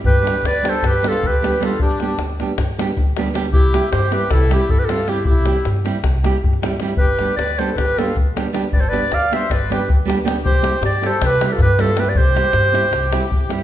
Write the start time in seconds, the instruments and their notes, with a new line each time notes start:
0.04 upright bass G2, accordion G4, clarinet B4, davul low
0.22 nylon-string guitar G3 B3 D4 G4
0.27 davul high
0.43 upright bass D2, clarinet D5, davul high
0.47 accordion B4
0.55 davul high
0.62 nylon-string guitar G3 B3 D4 G4, davul high
0.69 accordion A4, clarinet C5
0.82 upright bass G2, clarinet B4, davul high, davul low
0.88 accordion G4
1.03 nylon-string guitar G3 B3 D4 G4, davul high
1.08 accordion F4, clarinet A4
1.22 upright bass D2, davul low
1.26 accordion G4, clarinet B4
1.42 nylon-string guitar G3 B3 D4 G4, davul high
1.60 nylon-string guitar G3 B3 D4 G4, clarinet A4, davul high
1.64 accordion F4
1.71 davul high
1.79 upright bass G2, accordion D4, clarinet G4, davul low
1.91 davul high
2.00 nylon-string guitar G3 B3 D4 G4, davul high
2.18 upright bass D2, davul high
2.30 davul high
2.40 nylon-string guitar G3 B3 D4 G4, davul high
2.58 upright bass G2, davul high, davul low
2.78 nylon-string guitar G3 B3 D4 G4, davul high
2.97 upright bass D2, davul low
3.17 nylon-string guitar G3 B3 D4 G4, davul high
3.34 nylon-string guitar G3 B3 D4 G4, davul high
3.45 davul high
3.53 upright bass C2, accordion E4, clarinet G4, davul low
3.64 davul high
3.73 nylon-string guitar G3 C4 E4 G4, davul high
3.92 upright bass G2, accordion G4, clarinet C5, davul high
4.02 davul high
4.11 nylon-string guitar G3 C4 E4 G4, accordion G4, clarinet B4, davul high
4.31 upright bass C2, accordion E4, clarinet A4, davul high, davul low
4.49 nylon-string guitar G3 C4 E4 G4, accordion E4, davul high
4.54 clarinet G4
4.69 upright bass G2, accordion E4, clarinet A4, davul low
4.79 accordion G4, clarinet B4
4.85 accordion F4, clarinet A4
4.89 nylon-string guitar G3 C4 E4 G4, davul high
5.07 nylon-string guitar G3 C4 E4 G4, accordion E4, clarinet G4, davul high
5.16 davul high
5.25 upright bass C2, accordion E4, clarinet G4, davul low
5.35 davul high
5.45 nylon-string guitar G3 C4 E4 G4, davul high
5.56 davul high
5.65 upright bass G2, davul high
5.76 davul high
5.85 nylon-string guitar G3 C4 E4 G4, davul high
5.95 davul high
6.04 upright bass C2, davul high, davul low
6.15 davul high
6.24 nylon-string guitar G3 C4 E4 G4, davul high
6.44 upright bass G2, davul low
6.53 davul high
6.62 nylon-string guitar G3 C4 E4 G4, davul high
6.71 davul high
6.80 nylon-string guitar G3 C4 E4 G4, davul high
6.89 davul high
6.97 upright bass G1, accordion G4, clarinet B4, davul low
7.09 davul high
7.19 nylon-string guitar G3 B3 D4 G4, davul high
7.36 upright bass D2, accordion B4, clarinet D5, davul high
7.50 davul high
7.58 nylon-string guitar G3 B3 D4 G4, accordion A4, clarinet C5, davul high
7.71 accordion A4, clarinet C5
7.76 upright bass G1, accordion G4, clarinet B4, davul high, davul low
7.98 nylon-string guitar G3 B3 D4 G4, accordion F4, clarinet A4, davul high
8.15 upright bass D2, davul low
8.36 nylon-string guitar G3 B3 D4 G4, davul high
8.53 nylon-string guitar G3 B3 D4 G4, davul high
8.64 davul high
8.72 upright bass G1, accordion B4, clarinet D5, davul low
8.80 accordion A4, clarinet C5, davul high
8.89 nylon-string guitar G3 B3, accordion B4, clarinet D5
8.93 nylon-string guitar D4 G4, davul high
9.11 upright bass D2, accordion D5, clarinet F5, davul high
9.23 davul high
9.31 nylon-string guitar G3 B3 D4 G4, accordion C5, clarinet E5, davul high
9.50 upright bass G1, accordion B4, clarinet D5, davul high, davul low
9.70 nylon-string guitar G3 B3 D4 G4, accordion G4, clarinet B4, davul high
9.88 upright bass D2, davul low
10.05 nylon-string guitar G3 B3 D4 G4
10.10 davul high
10.25 nylon-string guitar G3 B3 D4 G4, davul high
10.37 davul high
10.44 upright bass C2, accordion G4, clarinet C5, davul low
10.55 davul high
10.61 nylon-string guitar G3 C4 E4 G4, davul high
10.81 upright bass G2, accordion G4, clarinet D5, davul high
10.93 davul high
11.01 nylon-string guitar G3 C4 E4 G4, accordion A4, davul high
11.07 clarinet C5
11.21 upright bass C2, accordion G4, clarinet B4, davul high, davul low
11.41 nylon-string guitar G3 C4 E4 G4, accordion F4, davul high
11.46 accordion G4, clarinet B4
11.52 accordion F4, clarinet A4
11.59 upright bass G2, accordion G4, clarinet B4, davul low
11.79 nylon-string guitar G3 C4 E4 G4, accordion F4, clarinet A4, davul high
11.97 nylon-string guitar G3 C4 E4 G4, accordion G4, clarinet B4, davul high
12.06 accordion B4, clarinet D5, davul high
12.15 upright bass C2, accordion G4, clarinet C5, davul low
12.35 nylon-string guitar G3 C4 E4 G4, davul high
12.45 davul high
12.53 upright bass G2, davul high
12.65 davul high
12.72 nylon-string guitar G3 C4 E4 G4, davul high
12.84 davul high
12.92 upright bass C2, davul high
13.04 davul high
13.11 nylon-string guitar G3 C4 E4 G4, davul high
13.23 davul high
13.31 upright bass G2, davul low
13.41 davul high
13.49 nylon-string guitar G3 C4 E4 G4, davul high
13.59 davul high